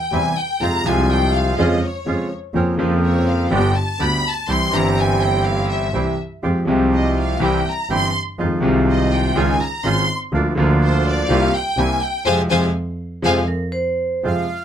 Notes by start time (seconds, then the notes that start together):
Already playing: G5
0.11 E2 C3 E3 G3 C4 E4 G#5
0.38 G5
0.60 F2 C3 F3 G#3 C4 F4 A#5
0.83 C2 C3 F3 G#3 C4 F4
0.87 F4 G#5
1.12 G5
1.36 F5
1.57 F2 C#3 F3 G#3 C#4 F4
1.62 D#5
1.84 C#5
2.06 F2 C#3 F3 G#3 C#4 F4
2.53 F2 C#3 F3 A#3 C4 C#4 F4 A#4
2.77 F2 C#3 F3 A#3 C4 F4 A#4
3.04 C#5
3.28 F5
3.50 G1 G2 D3 G3 B3 D4 G4 G5
3.75 A5
3.99 D2 D3 G3 B3 D4 G4 B5
4.28 A5
4.48 C2 C3 E3 G3 C4 E4 G4 C6
4.71 G1 G2 E3 G3 C4 E4 G4 A#5
4.99 G#5
5.23 G5
5.45 F5
5.68 E5
5.93 C2 C3 E3 G3 C4 E4 G4
6.42 F2 F3 G#3 C4 F4 G4
6.65 C2 C3 F3 G#3 C4 F4 G4
6.93 D#5
7.21 F5
7.39 C2 C3 E3 G3 C4 E4 G4
7.45 G5
7.71 A#5
7.89 G1 G2 E3 G3 C4 E4 G4
7.94 C6
8.38 F2 D#3 F3 G#3 C4 D#4 F4
8.60 C2 C3 D#3 G#3 C4 D#4 F4
8.90 D#5
9.14 G5
9.35 C#2 C#3 D#3 G#3 C#4 D#4 F4 G#5
9.62 A#5
9.84 G#1 G#2 D#3 G#3 C#4 D#4 F4 C6
10.32 D2 D3 F3 A#3 D4 F4
10.55 D2 D3 F3 A#3 D4 F4
10.84 C5
11.08 D5
11.28 C2 C3 G3 A#3 C4 F4 F5
11.55 G5
11.76 C2 C3 G3 A#3 C4 E4 G#5
12.01 G5
12.25 F2 C3 F3 G#3 C4 F4 C5 F5 G#5
12.50 F2 C3 F3 G#3 C4 F4 C5 F5 G#5
13.22 F2 C3 F3 G#3 C4 F4 C5 F5 G#5
13.48 A#4
13.72 C5
14.23 F2 C3 F3 G#3 C4 F4 F5